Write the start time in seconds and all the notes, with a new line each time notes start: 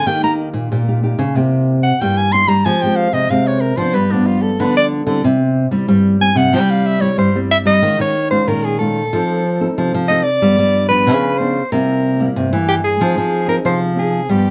0.06 D#3 A#3 D#4 G4 G5
0.23 A#3 D#4 G4 A#5
0.53 A#2
0.71 A#2 A#3 D#4 G4
0.88 A#3 D#4 G4
1.03 A#3 D#4 G4
1.19 C#3
1.36 C3 A#3 E4 G4
1.83 F#5
2.01 G2 G3 A#3 E4 G4 G5
2.17 G#5
2.32 A#3 E4 G4 C6
2.48 G3 A#5
2.65 F3 G#3 C4 G4 G#5
2.82 G#3 C4 G4 G5
2.96 F5
3.13 C3 D#5
3.30 C3 G#3 C4 G4 F5
3.47 C#5
3.61 A#4
3.77 F3 B3 D4 C5
3.94 G2 G3 B4
4.11 F3 B3 D4
4.26 F4
4.42 A4
4.60 D3 F3 B3 D4 B4
4.77 D5
5.07 D3 G3 C4 E4
5.24 C3
5.71 G3 C4 E4
5.88 G2 G3
6.20 G3 C4 E4 G#5
6.36 C3 F#5
6.53 C3 G3 C4 E4 G5
6.71 F5
6.86 E5
7.01 G3 C4 E4 C#5
7.18 G2 G3 C5
7.35 G3 C4 E4
7.51 E5
7.65 G3 D#5
7.82 D#3 G#3 C#4 F4
8.00 D#3 C#5
8.31 G#3 C#4 F4 C5
8.48 A#2 D#3 A#4
8.64 G#4
8.79 G#3 C#4 F4 A4
9.13 F3 C4 D#4 A4
9.61 C4 D#4 A4
9.78 C3 F3
9.94 F3
10.08 C4 D#4 A4 D#5
10.23 D5
10.42 G2 F3 G3 B3 D4
10.58 G3
10.89 F3 B3 D4 B4
11.07 C#3
11.38 F3 B3 D4 C5
11.72 C3 G3 A#3 E4 A#4
12.20 G3 A#3 E4
12.36 G2 C3
12.53 E3 G3 A#3 E4
12.68 G4
12.84 G#4
13.01 F3 C4 D#4 G#4
13.18 F3
13.47 C4 D#4 G#4 A#4
13.65 C3 F3 C5
13.96 C4 D#4 G#4
14.29 G2 F3 G3 B3 D4 G4